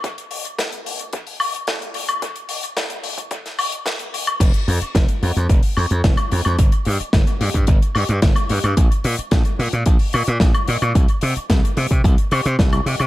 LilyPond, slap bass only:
\new Staff \with { instrumentName = "Slap bass" } { \clef bass \time 4/4 \key c \minor \tempo 4 = 110 r1 | r1 | f,,16 r16 f,16 r16 f,,16 r16 f,16 f,16 f,,16 r16 f,16 f,16 f,,16 r16 f,16 f,16 | g,,16 r16 g,16 r16 g,,16 r16 g,16 g,16 g,,16 r16 g,16 g,16 g,,16 r16 g,16 g,16 |
bes,,16 r16 bes,16 r16 bes,,16 r16 bes,16 bes,16 bes,,16 r16 bes,16 bes,16 bes,,16 r16 bes,16 bes,16 | c,16 r16 c16 r16 c,16 r16 c16 c16 c,16 r16 c16 c16 c,16 r16 c16 c16 | }